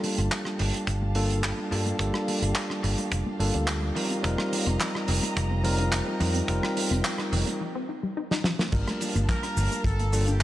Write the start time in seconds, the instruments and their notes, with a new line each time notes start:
Already playing: tine electric piano G3 A#3 D4 F4 A4, violin section G4 F5 A5
0.04 synth arpeggio sound F3, open hi-hat
0.18 fingered electric bass G1, synth arpeggio sound A#3, closed hi-hat
0.31 synth arpeggio sound F3, kick, clap, closed hi-hat
0.45 synth arpeggio sound D4, cross-stick
0.59 fingered electric bass G1, synth arpeggio sound F3, open hi-hat
0.74 synth arpeggio sound A3, closed hi-hat
0.87 fingered electric bass G1, synth arpeggio sound F3, kick, closed hi-hat
1.02 synth arpeggio sound A#3
1.15 synth arpeggio sound F3, tine electric piano G3 A#3 D4 F4 A4, open hi-hat
1.30 synth arpeggio sound D4, closed hi-hat
1.44 synth arpeggio sound F3, kick, clap, closed hi-hat
1.58 synth arpeggio sound A3
1.71 fingered electric bass G2, tine electric piano G3 A#3 D4 F4 A4, open hi-hat
1.86 synth arpeggio sound A#3, closed hi-hat
1.98 fingered electric bass G1, synth arpeggio sound F3, tine electric piano G3 A#3 D4 F4 A4, kick, closed hi-hat
2.14 synth arpeggio sound A3, cross-stick
2.28 synth arpeggio sound F3, open hi-hat
2.42 fingered electric bass G1, synth arpeggio sound A#3, closed hi-hat
2.55 synth arpeggio sound F3, kick, clap, closed hi-hat
2.70 synth arpeggio sound D4, cross-stick
2.84 fingered electric bass G1, synth arpeggio sound F3, open hi-hat
2.98 synth arpeggio sound A3, closed hi-hat
3.12 fingered electric bass F1, synth arpeggio sound F3, kick, closed hi-hat
3.26 synth arpeggio sound A#3, muted fingered electric bass stroke
3.39 fingered electric bass G1, synth arpeggio sound F3, tine electric piano G3 A#3 D4 F4 A4, open hi-hat
3.54 fingered electric bass D2, synth arpeggio sound D4, closed hi-hat
3.67 synth arpeggio sound F3, kick, clap, closed hi-hat
3.82 synth arpeggio sound A3
3.96 synth arpeggio sound F3, tine electric piano G3 C4 D#4 F4 A#4, violin section D#5 A#5, open hi-hat
4.10 synth arpeggio sound C4, closed hi-hat
4.23 fingered electric bass F1, synth arpeggio sound F3, tine electric piano G3 C4 D#4 F4 A#4, kick, closed hi-hat
4.38 synth arpeggio sound A#3, cross-stick
4.52 synth arpeggio sound F3, open hi-hat
4.66 fingered electric bass F1, synth arpeggio sound C4, closed hi-hat
4.80 synth arpeggio sound F3, kick, clap, closed hi-hat
4.95 synth arpeggio sound D#4, cross-stick
5.08 fingered electric bass F1, synth arpeggio sound F3, open hi-hat
5.23 synth arpeggio sound A#3, closed hi-hat
5.37 fingered electric bass F1, synth arpeggio sound F3, kick, closed hi-hat
5.51 synth arpeggio sound C4
5.64 synth arpeggio sound F3, tine electric piano G3 C4 D#4 F4 A#4, open hi-hat
5.78 synth arpeggio sound D#4, closed hi-hat
5.92 synth arpeggio sound F3, kick, clap, closed hi-hat
6.07 synth arpeggio sound A#3
6.20 fingered electric bass F2, synth arpeggio sound F3, tine electric piano G3 C4 D#4 F4 A#4, violin section G5, open hi-hat
6.34 synth arpeggio sound C4, closed hi-hat
6.47 fingered electric bass F1, synth arpeggio sound F3, tine electric piano G3 C4 D#4 F4 A#4, kick, closed hi-hat
6.63 synth arpeggio sound A#3, cross-stick
6.76 synth arpeggio sound F3, open hi-hat
6.91 fingered electric bass F1, synth arpeggio sound C4, closed hi-hat
7.05 synth arpeggio sound F3, kick, clap, closed hi-hat
7.18 synth arpeggio sound D#4, cross-stick
7.32 fingered electric bass F1, synth arpeggio sound F3, open hi-hat
7.47 synth arpeggio sound A#3, closed hi-hat
7.61 synth arpeggio sound F3
7.75 synth arpeggio sound C4
7.89 synth arpeggio sound D#4
8.03 synth arpeggio sound G3
8.17 synth arpeggio sound D#4
8.31 synth arpeggio sound D#4, snare
8.44 synth arpeggio sound F3, snare
8.59 synth arpeggio sound A#3, snare
8.72 fingered electric bass G1, synth arpeggio sound F3, tine electric piano G3 A#3 D4 F4 A#4, violin section A#3 G4 F5 A5, kick, closed hi-hat, crash, shaker
8.87 synth arpeggio sound A3, cross-stick, closed hi-hat
9.01 synth arpeggio sound F3, open hi-hat, shaker
9.16 fingered electric bass G1, synth arpeggio sound A#3, closed hi-hat, shaker
9.29 synth arpeggio sound F3, trumpet section A#4, kick, clap, closed hi-hat, shaker
9.43 synth arpeggio sound D4, cross-stick, closed hi-hat
9.57 fingered electric bass G1, synth arpeggio sound F3, open hi-hat, shaker
9.72 synth arpeggio sound A3, closed hi-hat, shaker
9.84 fingered electric bass G1, synth arpeggio sound F3, trumpet section A4, kick, closed hi-hat, shaker
9.99 synth arpeggio sound A#3, closed hi-hat
10.12 synth arpeggio sound F3, tine electric piano G3 A#3 D4 F4 A4, open hi-hat, shaker
10.27 synth arpeggio sound D4, trumpet section G4, closed hi-hat, shaker